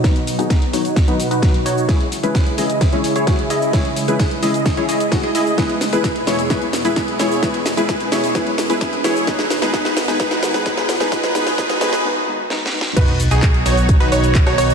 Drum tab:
CC |------------------------------------------------|------------------------------------------------|------------------------------------------------|------------------------------------------------|
HH |x--x--o--x--x--x--o--x--x--x--o--x--x--x--o-----|x--x--o--x--x--x--o--x--x--x--o--x--x--x--o-----|x--x--o--x--x--x--o--x--x--x--o--x--x--x--o-----|x--x--o--x--x--x--o--x--x--x--o--x--x--x--o-----|
SH |x-----x--x--x-----x--x--x-----x--x--x-----x--x--|x-----x--x--x-----x--x--x-----x--x--x-----x--x--|x-----x--x--x-----x--x--x-----x--x--x-----x--x--|x-----x--x--x-----x--x--x-----x--x--x-----x--x--|
CP |------------------------------------------------|------------------------------------------------|------------------------------------------------|------------------------------------------------|
SD |o-----------o-----------o-----------o-----------|o-----------o-----------o-----------o-----------|o-----------o-----------o-----------o-----------|o-----o-----o-----o-----o-----o-----o-----o-----|
BD |o-----------o-----------o-----------o-----------|o-----------o-----------o-----------o-----------|o-----------o-----------o-----------o-----------|o-----------o-----------o-----------o-----------|

CC |------------------------------------------------|------------------------------------------------|------------------------------------------------|x-----------------------------------------------|
HH |x--x--o--x--x--x--o--x--x--x--o--x--x--x--o-----|x--x--o--x--x--x--o--x--x--x--o--x--x--x--o-----|x--x--o--x--x--x--o--x--------------------------|x--x--o--x--x--x--o--x--x--x--o--x--x--x--o-----|
SH |x-----x--x--x-----x--x--x-----x--x--x-----x--x--|x-----x--x--x-----x--x--x-----x--x--x-----x--x--|x--x--x--x--x-----x--x--------------------------|x-----x--x--x-----x--x--x-----x--x--x-----x--x--|
CP |------------------------------------------------|------------------------------------------------|------------------------------------------------|------------x-----------------------x-----------|
SD |o-----o-----o-----o-----o-----o-----o-----o-----|o--o--o--o--o--o--o--o--o--o--o--o--o--o--o--o--|o--o--o--o--o--o--o--o--------------o---o---o---|---------------------------------------r--------|
BD |o-----------o-----------o-----------o-----------|o-----------o-----------o-----------o-----------|o-----------o-----------------------------------|o-----------o-----------o-----------o-----------|